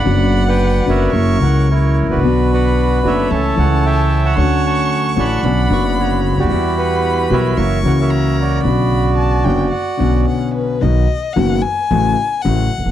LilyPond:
<<
  \new Staff \with { instrumentName = "Violin" } { \time 4/4 \key b \minor \tempo 4 = 112 fis''2 cis'''4. r8 | b''2 a''2 | cis'''2 b''2 | b''2 cis'''4 ais''4 |
b''4 a''8 g''8 fis''4 fis''8 b'8 | \key fis \mixolydian dis''4 fis''8 gis''4. fis''4 | }
  \new Staff \with { instrumentName = "Bandoneon" } { \time 4/4 \key b \minor << { b''8. g''8. e''4 fis''8 cis''8. d''16~ | d''8 fis''4 e''4 fis''8 g''8. a''16~ | a''8 cis'''4 b''4 cis'''8 cis''8. d''16~ | d''8 fis''4 e''4 fis''16 e''8. d''8~ |
d''2. r4 | \key fis \mixolydian r1 | } \\ { <d'' fis''>8. <b' d''>8. <ais' cis''>4. <e' ais'>8. <fis' b'>16~ | <fis' b'>8 <b' d''>4 <a' cis''>4. <cis'' e''>8. <cis'' fis''>16~ | <cis'' fis''>8 <fis'' a''>4 <d'' fis''>4. fis'8. <fis' g'>16~ | <fis' g'>8 b'4 <ais' cis''>4~ <ais' cis''>16 <ais' cis''>8. fis'8~ |
fis'2. r4 | r1 | } >> }
  \new Staff \with { instrumentName = "Bandoneon" } { \time 4/4 \key b \minor r1 | <b d' fis'>4. <b d' fis'>8 <a cis' e'>8 <a cis' e'>4. | <fis cis'>4. <fis cis' d'>8 <b cis' d'>8 <cis b>4. | <g e' fis''>4. <g e' fis'>8 <ais e' fis'>8 <ais e' fis'>4. |
<cis b>4. <b cis' d'>8 r8 <b cis'>4. | \key fis \mixolydian r1 | }
  \new Staff \with { instrumentName = "Grand piano" } { \clef bass \time 4/4 \key b \minor << { <fis, d fis b d'>4. <fis, d fis b fis'>8 <fis, cis fis ais e'>8 <cis, cis fis ais e'>4. | <b,, b, d fis b fis'>4. <fis,, fis, d fis b fis'>8 <cis, cis e a cis' a'>8 <cis, cis e a cis' a'>4. | <d, d a cis' fis'>4. <a,, a, d a cis' fis'>8 <b,, b, d b cis' fis'>8 <fis,, fis, cis d b fis'>4. | <e, e g b fis''>4. <b,, b, e g b fis'>8 <fis, e fis ais cis' fis'>8 <cis, cis e ais cis' fis'>4. |
<b,, b, cis d b fis'>4. <fis,, fis, d b cis' fis'>8 r8 <b,, b, d b cis' fis'>4. | \key fis \mixolydian <b,, b, dis fis b fis'>8 r8 <fis,, fis, dis fis b fis'>8 r8 <a,, a, cis fis a fis'>8 r8 <a,, a, cis fis a fis'>8 r8 | } \\ { r2. r8 r32 gis,,32 a,,32 ais,,32 | r1 | r2. r8 r32 cis,32 d,32 dis,32 | r1 |
r1 | r2. r8 r32 eis,,32 fis,,32 r32 | } >> }
  \new Staff \with { instrumentName = "Upright bass" } { \clef bass \time 4/4 \key b \minor fis,,4~ fis,,16. r32 fis,,16. r32 fis,,16. r32 cis,4~ cis,32 gis,,32 a,,32 ais,,32 | b,,4~ b,,16. r32 fis,,16. r32 cis,16. r32 cis,4~ cis,16. r32 | d,4~ d,16. r32 a,,16. r32 b,,16. r32 fis,,4~ fis,,32 cis,32 d,32 dis,32 | e,4~ e,16. r32 b,,16. r32 fis,,16. r32 cis,4~ cis,16. r32 |
b,,4~ b,,16. r32 fis,,16. r8 r32 b,,16. r4 r32 | \key fis \mixolydian b,,16. r8 r32 fis,,16. r8 r32 a,,16. r8 r32 a,,16. r16 eis,,32 fis,,32 r32 | }
>>